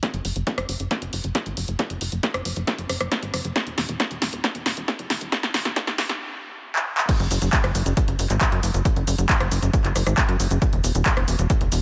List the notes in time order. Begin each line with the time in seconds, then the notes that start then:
0.03 kick, snare, closed hi-hat
0.14 F#1, closed hi-hat
0.25 F#1, open hi-hat
0.36 F#1, closed hi-hat
0.47 kick, snare, closed hi-hat
0.58 F#1, cross-stick, closed hi-hat
0.69 F#1, open hi-hat
0.80 F#1, closed hi-hat
0.91 kick, snare, closed hi-hat
1.02 F#1, closed hi-hat
1.13 F#1, open hi-hat
1.24 F#1, closed hi-hat
1.35 kick, snare, closed hi-hat
1.46 G#1, closed hi-hat
1.57 F#1, open hi-hat
1.68 F#1, closed hi-hat
1.79 kick, snare, closed hi-hat
1.90 F#1, closed hi-hat
2.01 F#1, open hi-hat
2.12 F#1, closed hi-hat
2.23 kick, snare, closed hi-hat
2.34 F#1, cross-stick, closed hi-hat
2.45 F#1, open hi-hat
2.56 F#1, closed hi-hat
2.67 kick, snare, closed hi-hat
2.78 F#1, closed hi-hat
2.89 F#1, cross-stick, open hi-hat
3.01 F#1, cross-stick, closed hi-hat
3.12 kick, snare, closed hi-hat
3.23 G#1, closed hi-hat
3.34 F#1, cross-stick, open hi-hat
3.45 F#1, closed hi-hat
3.56 kick, snare, closed hi-hat
3.67 E1, closed hi-hat
3.78 E1, snare, open hi-hat
3.89 E1, closed hi-hat
4.00 kick, snare, closed hi-hat
4.11 E1, closed hi-hat
4.22 E1, snare, open hi-hat
4.33 E1, closed hi-hat
4.44 kick, snare, closed hi-hat
4.55 E1, closed hi-hat
4.66 E1, snare, open hi-hat
4.77 E1, closed hi-hat
4.88 kick, snare, closed hi-hat
4.99 F#1, closed hi-hat
5.10 E1, snare, open hi-hat
5.21 E1, closed hi-hat
5.32 kick, snare, closed hi-hat
5.43 E1, snare, closed hi-hat
5.54 E1, snare, open hi-hat
5.65 E1, snare, closed hi-hat
5.76 kick, snare, closed hi-hat
5.87 E1, snare, closed hi-hat
5.98 E1, kick, snare, open hi-hat
6.09 E1, snare, closed hi-hat
6.76 clap
6.98 clap
7.09 kick, closed hi-hat, crash, shaker
7.20 F#1, closed hi-hat
7.31 F#1, open hi-hat, shaker
7.42 F#1, closed hi-hat, shaker
7.53 kick, clap, closed hi-hat, shaker
7.64 F#1, cross-stick, closed hi-hat
7.75 F#1, open hi-hat, shaker
7.86 F#1, closed hi-hat, shaker
7.97 kick, closed hi-hat, shaker
8.08 F#1, closed hi-hat
8.19 F#1, open hi-hat, shaker
8.30 G#1, clap, closed hi-hat, shaker
8.41 kick, clap, closed hi-hat, shaker
8.52 F#2, closed hi-hat
8.63 F#1, open hi-hat, shaker
8.74 F#1, closed hi-hat, shaker
8.85 kick, closed hi-hat, shaker
8.96 F#1, closed hi-hat
9.07 F#1, open hi-hat, shaker
9.18 F#1, closed hi-hat, shaker
9.29 kick, clap, closed hi-hat, shaker
9.40 F#1, cross-stick, closed hi-hat
9.51 F#1, open hi-hat, shaker
9.62 F#1, closed hi-hat, shaker
9.73 kick, closed hi-hat, shaker
9.85 F#1, clap, closed hi-hat
9.96 F#1, cross-stick, open hi-hat, shaker
10.07 G#1, cross-stick, closed hi-hat, shaker
10.18 kick, clap, closed hi-hat, shaker
10.29 F#2, closed hi-hat
10.40 F#1, open hi-hat, shaker
10.51 F#1, closed hi-hat, shaker
10.62 kick, closed hi-hat, shaker
10.73 E1, closed hi-hat
10.84 E1, open hi-hat, shaker
10.95 E1, closed hi-hat, shaker
11.06 kick, clap, closed hi-hat, shaker
11.17 E1, cross-stick, closed hi-hat
11.28 E1, open hi-hat, shaker
11.39 E1, closed hi-hat, shaker
11.50 kick, closed hi-hat, shaker
11.61 E1, closed hi-hat
11.72 E1, open hi-hat, shaker